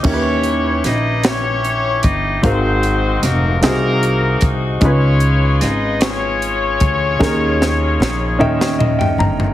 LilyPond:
<<
  \new Staff \with { instrumentName = "Horn section" } { \time 6/8 \key dis \phrygian \tempo 4. = 50 << { <cis' cis''>4 <dis' dis''>8 <cis' cis''>4 <dis' dis''>8 | <bis bis'>4 <ais ais'>8 <ais ais'>4 r8 | <cis' cis''>4 <dis' dis''>8 <cis' cis''>4.~ | <cis' cis''>2 r4 | } \\ { <e' g'>4. <e' g'>4. | <dis' fis'>4. <dis' fis'>4. | <eis' gis'>4. <eis' gis'>4.~ | <eis' gis'>2 r4 | } >> }
  \new Staff \with { instrumentName = "Grand piano" } { \time 6/8 \key dis \phrygian << { r2. | r2. | r2. | r2 dis''16 g''16 ais''8 | } \\ { <cis' e' g' ais' b'>2. | <bis fis' ais' eis''>4. <bis dis' fis' gis'>4. | <cis' dis' eis' b'>2. | <cis' dis' gis' ais'>4. <cis' dis' e'' g''>4. | } >> }
  \new Staff \with { instrumentName = "Grand piano" } { \clef bass \time 6/8 \key dis \phrygian dis4. r4. | gis,4. bis,4. | cis4. r4. | dis4. dis4. | }
  \new Staff \with { instrumentName = "Upright bass" } { \clef bass \time 6/8 \key dis \phrygian dis,4 ais,,4. g,,8 | gis,,4 eis,,8 bis,,4 bis,,8 | cis,4 gis,,4. d,8 | dis,4 ais,,8 dis,4 g,,8 | }
  \new DrumStaff \with { instrumentName = "Drums" } \drummode { \time 6/8 <cymc bd>8 hh8 <hh sn>8 <hh sn>8 hh8 <hh bd>8 | <hh bd>8 hh8 <hh sn>8 <hh sn>8 hh8 <hh bd>8 | <hh bd>8 hh8 <hh sn>8 <hh sn>8 hh8 <hh bd>8 | <bd sn>8 sn8 sn8 toml16 sn16 toml16 tomfh16 tomfh16 tomfh16 | }
>>